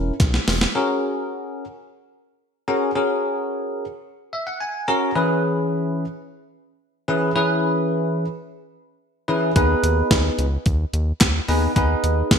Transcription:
0.00 0.12 E1 loud
0.00 0.13 C#4 medium
0.00 0.13 E4 medium
0.00 0.13 A#4 loud
0.20 0.39 B1 loud
0.20 kick loud
0.20 snare medium
0.20 closed hi-hat medium
0.34 snare medium
0.48 0.67 E1 medium
0.48 snare medium
0.48 open hi-hat medium
0.61 snare medium
0.75 1.64 C#4 medium
0.75 1.64 F#4 medium
0.75 1.64 G#4 medium
0.75 1.64 A#4 loud
2.68 2.90 C#4 medium
2.68 2.90 F#4 medium
2.68 2.90 G#4 medium
2.68 2.90 A#4 loud
2.95 3.84 C#4 medium
2.95 3.84 F#4 medium
2.95 3.84 G#4 medium
2.95 3.84 A#4 loud
4.33 4.46 E5 medium
4.47 4.60 F#5 medium
4.60 4.86 G#5 medium
4.88 5.10 C#4 medium
4.88 5.10 F#4 medium
4.88 5.10 G#4 medium
4.88 5.10 A#4 loud
4.88 5.14 A#5 medium
5.15 6.04 E3 medium
5.15 6.04 C#4 medium
5.15 6.04 E4 medium
5.15 6.04 G#4 medium
5.15 6.04 B4 loud
7.08 7.30 E3 medium
7.08 7.30 C#4 medium
7.08 7.30 E4 medium
7.08 7.30 G#4 medium
7.08 7.30 B4 loud
7.36 8.25 E3 medium
7.36 8.25 C#4 medium
7.36 8.25 E4 medium
7.36 8.25 G#4 medium
7.36 8.25 B4 loud
9.28 9.50 E3 medium
9.28 9.51 C#4 medium
9.28 9.50 E4 medium
9.28 9.50 G#4 medium
9.28 9.50 B4 loud
9.56 9.75 D#2 loud
9.56 10.45 B3 medium
9.56 10.45 D#4 medium
9.56 10.45 G#4 medium
9.56 10.45 B4 loud
9.56 kick loud
9.56 closed hi-hat medium
9.83 10.03 D#2 loud
9.83 closed hi-hat medium
10.11 10.30 D#2 loud
10.11 kick loud
10.11 snare loud
10.11 closed hi-hat medium
10.38 10.58 C#2 loud
10.38 closed hi-hat medium
10.66 10.85 D#2 loud
10.66 kick loud
10.66 closed hi-hat medium
10.93 11.13 D#2 loud
10.93 closed hi-hat medium
11.21 11.40 D#2 loud
11.21 kick loud
11.21 snare loud
11.21 clap loud
11.21 closed hi-hat medium
11.48 11.68 D#2 loud
11.48 11.71 B3 medium
11.48 11.71 D#4 medium
11.48 11.71 G#4 medium
11.48 11.71 B4 loud
11.48 open hi-hat medium
11.76 11.95 D#2 loud
11.76 12.39 B3 medium
11.76 12.39 D#4 medium
11.76 12.39 G#4 medium
11.76 12.39 B4 loud
11.76 kick loud
11.76 closed hi-hat medium
12.04 12.23 D#2 loud
12.04 closed hi-hat medium
12.31 12.39 D#2 loud
12.31 kick loud
12.31 snare loud
12.31 closed hi-hat medium

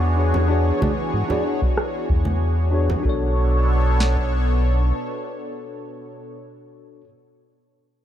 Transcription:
0.00 0.72 E2 loud
0.00 3.01 E3 medium
0.00 3.01 B3 medium
0.00 0.12 D4 medium
0.00 3.01 D4 medium
0.00 0.13 F#4 medium
0.00 3.01 F#4 medium
0.00 0.14 G#4 medium
0.00 3.01 G#4 medium
0.00 0.15 C#5 medium
0.00 3.01 C#5 medium
0.00 shaker soft
0.16 0.45 D4 medium
0.16 0.46 F#4 medium
0.16 0.46 G#4 medium
0.16 0.47 C#5 medium
0.34 low conga medium
0.34 shaker medium
0.48 0.77 D4 medium
0.48 0.77 F#4 medium
0.48 0.78 G#4 medium
0.48 0.79 C#5 medium
0.48 shaker soft
0.67 shaker soft
0.80 0.90 D4 medium
0.80 0.91 F#4 medium
0.80 0.91 G#4 medium
0.80 0.92 D5 medium
0.80 kick medium
0.80 high conga medium
0.99 shaker medium
1.14 1.24 G#2 loud
1.14 shaker soft
1.28 1.41 D4 medium
1.28 1.41 F#4 medium
1.28 1.42 G#4 medium
1.28 1.42 D5 medium
1.28 low conga medium
1.44 1.60 D4 medium
1.44 1.60 F#4 medium
1.44 1.61 G#4 medium
1.44 1.61 C#5 medium
1.62 kick loud
1.62 shaker medium
1.77 cross-stick medium
1.77 shaker soft
2.10 2.95 E2 medium
2.10 kick medium
2.25 high conga medium
2.71 2.87 D4 medium
2.71 2.87 F#4 medium
2.71 2.88 G#4 medium
2.71 2.88 C#5 medium
2.90 low conga medium
3.00 7.01 D4 medium
3.00 7.04 F#4 medium
3.05 4.92 B1 medium
3.05 6.36 B2 medium
3.05 6.37 B3 medium
3.05 6.37 D4 medium
3.05 6.37 A4 medium
3.05 7.07 A4 medium
3.05 6.37 C#5 medium
3.05 kick medium
3.09 7.08 C#5 medium
4.00 snare medium
4.17 kick medium

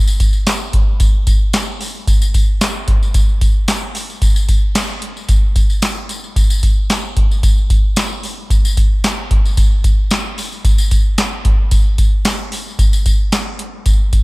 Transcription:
0.07 tambourine medium
0.20 kick medium
0.20 closed hi-hat medium
0.20 tambourine soft
0.33 tambourine soft
0.47 snare loud
0.47 clap medium
0.47 closed hi-hat loud
0.47 tambourine medium
0.73 kick loud
0.73 closed hi-hat medium
1.00 kick loud
1.00 closed hi-hat medium
1.00 tambourine medium
1.27 kick loud
1.27 closed hi-hat medium
1.27 tambourine soft
1.53 snare loud
1.53 clap medium
1.53 closed hi-hat medium
1.53 tambourine loud
1.81 open hi-hat medium
1.81 tambourine medium
2.08 kick loud
2.08 closed hi-hat medium
2.08 tambourine medium
2.22 tambourine medium
2.34 kick medium
2.34 closed hi-hat medium
2.34 tambourine medium
2.61 snare loud
2.61 clap medium
2.61 closed hi-hat medium
2.61 tambourine medium
2.88 kick loud
2.88 closed hi-hat medium
3.03 tambourine soft
3.14 kick loud
3.14 closed hi-hat medium
3.14 tambourine medium
3.41 kick medium
3.41 closed hi-hat medium
3.41 tambourine soft
3.68 snare loud
3.68 clap medium
3.68 closed hi-hat medium
3.68 tambourine medium
3.95 open hi-hat medium
3.95 tambourine medium
4.10 tambourine soft
4.22 kick loud
4.22 closed hi-hat medium
4.22 tambourine medium
4.36 tambourine medium
4.49 kick medium
4.49 closed hi-hat medium
4.49 tambourine medium
4.75 snare loud
4.75 clap loud
4.75 closed hi-hat loud
4.75 tambourine medium
5.02 closed hi-hat medium
5.17 tambourine soft
5.29 kick loud
5.29 closed hi-hat medium
5.29 tambourine medium
5.55 kick medium
5.55 closed hi-hat medium
5.55 tambourine soft
5.70 tambourine soft
5.82 snare loud
5.82 clap medium
5.82 closed hi-hat loud
5.82 tambourine loud
6.09 closed hi-hat medium
6.09 tambourine medium
6.24 tambourine soft
6.36 kick loud
6.36 closed hi-hat medium
6.36 tambourine medium
6.50 tambourine medium
6.63 kick medium
6.63 closed hi-hat medium
6.63 tambourine soft
6.90 snare loud
6.90 clap medium
6.90 closed hi-hat medium
6.90 tambourine medium
7.17 kick loud
7.17 closed hi-hat medium
7.31 tambourine soft
7.43 kick loud
7.43 closed hi-hat medium
7.43 tambourine medium
7.70 kick loud
7.70 closed hi-hat medium
7.70 tambourine soft
7.96 snare loud
7.96 clap medium
7.96 closed hi-hat medium
7.96 tambourine medium
8.23 open hi-hat medium
8.23 tambourine medium
8.50 kick loud
8.50 closed hi-hat medium
8.50 tambourine medium
8.65 tambourine medium
8.77 kick medium
8.77 closed hi-hat medium
8.77 tambourine soft
9.04 snare loud
9.04 clap medium
9.04 closed hi-hat medium
9.04 tambourine medium
9.31 kick loud
9.31 closed hi-hat medium
9.45 tambourine soft
9.57 kick loud
9.57 closed hi-hat medium
9.57 tambourine medium
9.84 kick loud
9.84 closed hi-hat medium
9.84 tambourine soft
10.11 snare loud
10.11 clap medium
10.11 closed hi-hat medium
10.11 tambourine medium
10.38 open hi-hat medium
10.38 tambourine medium
10.52 tambourine soft
10.65 kick loud
10.65 closed hi-hat medium
10.65 tambourine medium
10.78 tambourine medium
10.91 kick medium
10.91 closed hi-hat medium
10.91 tambourine medium
11.18 snare loud
11.18 clap loud
11.18 closed hi-hat loud
11.18 tambourine medium
11.45 kick loud
11.45 closed hi-hat medium
11.71 kick loud
11.71 closed hi-hat medium
11.71 tambourine medium
11.98 kick medium
11.98 closed hi-hat medium
11.98 tambourine soft
12.25 snare loud
12.25 clap medium
12.25 closed hi-hat medium
12.25 tambourine medium
12.52 open hi-hat medium
12.52 tambourine medium
12.67 tambourine soft
12.79 kick loud
12.79 closed hi-hat medium
12.79 tambourine medium
12.93 tambourine medium
13.06 kick medium
13.06 closed hi-hat medium
13.06 tambourine medium
13.32 snare loud
13.32 clap loud
13.32 closed hi-hat loud
13.32 tambourine medium
13.59 closed hi-hat medium
13.86 kick loud
13.86 closed hi-hat medium
13.86 tambourine medium
14.13 kick loud
14.13 closed hi-hat medium
14.13 tambourine soft

